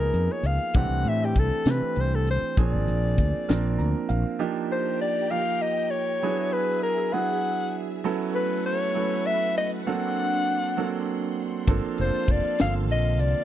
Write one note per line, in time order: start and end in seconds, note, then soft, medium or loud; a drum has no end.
0.00 0.11 C#2 medium
0.00 0.70 F3 medium
0.00 0.70 A#3 medium
0.00 0.70 B3 medium
0.00 0.70 D#4 medium
0.00 0.70 G#4 medium
0.00 0.33 A#4 medium
0.14 0.28 F2 medium
0.14 closed hi-hat medium
0.32 0.48 C#5 medium
0.43 0.58 C#2 medium
0.43 0.77 F5 medium
0.43 closed hi-hat medium
0.74 0.89 C2 medium
0.74 1.61 E3 medium
0.74 1.61 A3 medium
0.74 1.61 C4 medium
0.74 1.61 D4 medium
0.74 1.61 G4 medium
0.74 1.10 F#5 medium
0.74 kick loud
0.74 closed hi-hat medium
0.90 1.04 C2 medium
1.05 1.33 A2 medium
1.05 1.27 E5 medium
1.05 closed hi-hat medium
1.25 1.41 G4 medium
1.36 1.50 C2 medium
1.36 1.72 A4 medium
1.36 kick medium
1.36 closed hi-hat medium
1.66 1.80 C3 medium
1.66 2.53 E3 medium
1.66 2.53 A3 medium
1.66 2.52 C4 medium
1.66 2.53 D4 medium
1.66 2.53 G4 medium
1.66 snare loud
1.66 closed hi-hat medium
1.71 2.02 B4 medium
1.82 muted fretless electric bass stroke soft
1.96 2.38 C2 medium
1.96 closed hi-hat medium
2.00 2.16 C5 medium
2.15 2.29 A4 medium
2.27 2.58 C5 medium
2.27 closed hi-hat soft
2.42 muted fretless electric bass stroke soft
2.57 2.75 A#1 medium
2.57 3.43 F3 medium
2.57 3.44 A#3 medium
2.57 3.44 C4 medium
2.57 3.44 D4 medium
2.57 3.44 G#4 medium
2.57 4.07 D5 medium
2.57 kick loud
2.57 closed hi-hat medium
2.73 2.87 G#1 medium
2.88 3.15 A#1 medium
2.88 closed hi-hat soft
3.18 3.32 D2 medium
3.18 kick medium
3.18 closed hi-hat medium
3.34 muted fretless electric bass stroke soft
3.48 3.77 A#1 medium
3.48 4.35 F3 medium
3.48 4.34 A#3 medium
3.48 4.35 C4 medium
3.48 4.35 D4 medium
3.48 4.35 A#4 medium
3.48 snare loud
3.48 closed hi-hat medium
3.79 3.93 D2 medium
3.79 4.07 A#5 medium
3.79 closed hi-hat soft
4.09 4.24 A#1 medium
4.09 4.38 F5 medium
4.09 closed hi-hat medium
4.39 5.25 F3 medium
4.39 5.26 A#3 medium
4.39 5.26 D4 medium
4.39 5.26 D#4 medium
4.39 5.26 G4 medium
4.39 6.21 G4 medium
4.39 6.21 G5 medium
4.39 6.20 A#5 medium
4.72 5.00 C5 medium
5.01 5.32 D5 medium
5.31 6.17 F3 medium
5.31 6.17 A#3 medium
5.31 6.17 D#4 medium
5.31 6.17 G4 medium
5.31 5.63 F5 medium
5.62 5.92 D#5 medium
5.91 6.54 C#5 medium
6.23 7.08 F#3 medium
6.23 7.08 B3 medium
6.23 7.09 D4 medium
6.23 7.09 E4 medium
6.23 7.08 G#4 medium
6.23 8.04 G#4 medium
6.23 8.04 E5 medium
6.53 6.82 B4 medium
6.83 7.15 A#4 medium
7.13 7.99 F#3 medium
7.13 7.99 B3 medium
7.13 7.99 D4 medium
7.13 7.99 E4 medium
7.13 7.99 G#4 medium
7.13 7.82 F#5 loud
8.04 8.90 F#3 medium
8.04 9.85 A3 medium
8.04 8.90 B3 medium
8.04 8.90 C#4 medium
8.04 8.90 E4 medium
8.04 8.90 A4 loud
8.04 9.85 B4 medium
8.04 11.64 F#5 medium
8.04 9.85 C#6 medium
8.35 8.63 B4 medium
8.66 9.28 C#5 medium
8.95 9.81 F#3 medium
8.95 9.81 B3 medium
8.95 9.81 C#4 medium
8.95 9.81 E4 medium
8.95 9.81 A4 medium
9.26 9.56 E5 medium
9.57 9.71 D#5 medium
9.87 10.72 F#3 medium
9.87 10.72 A#3 medium
9.87 10.72 C4 medium
9.87 10.72 D4 medium
9.87 11.67 D4 medium
9.87 10.72 A4 medium
9.87 11.04 F#5 loud
9.87 13.44 C6 medium
10.77 11.63 F#3 medium
10.77 11.63 A#3 medium
10.77 11.63 C4 medium
10.77 11.63 D4 medium
10.77 11.63 A4 medium
11.67 11.81 G1 medium
11.67 12.53 F3 medium
11.67 12.53 A#3 medium
11.67 12.53 C4 medium
11.67 12.54 D4 medium
11.67 12.54 A4 loud
11.67 13.44 F5 medium
11.67 13.44 A5 medium
11.67 kick loud
11.67 closed hi-hat medium
11.85 muted fretless electric bass stroke soft
11.98 12.13 F1 medium
11.98 12.33 C5 medium
11.98 closed hi-hat medium
12.15 muted fretless electric bass stroke soft
12.28 12.42 F1 medium
12.28 12.60 D5 medium
12.28 kick medium
12.28 closed hi-hat medium
12.45 muted fretless electric bass stroke soft
12.59 12.90 G1 medium
12.59 13.44 D3 medium
12.59 13.44 F3 medium
12.59 13.44 A#3 medium
12.59 13.44 C4 medium
12.59 13.44 A4 medium
12.59 12.74 F5 medium
12.59 snare loud
12.59 closed hi-hat medium
12.89 13.20 A#1 medium
12.89 13.22 D#5 medium
12.89 closed hi-hat medium
13.19 13.33 C2 medium
13.19 13.44 D5 medium
13.19 closed hi-hat medium